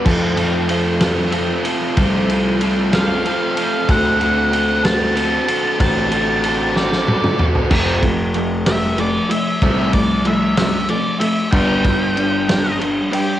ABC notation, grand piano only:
X:1
M:6/8
L:1/8
Q:3/8=63
K:Flyd
V:1 name="Grand piano" clef=bass
F,, F,,4 z | C,,4 z2 | D,, D,,4 z | A,,,4 z2 |
F,,, F,,,4 z | C,,4 z2 | G,,, G,,,4 z |]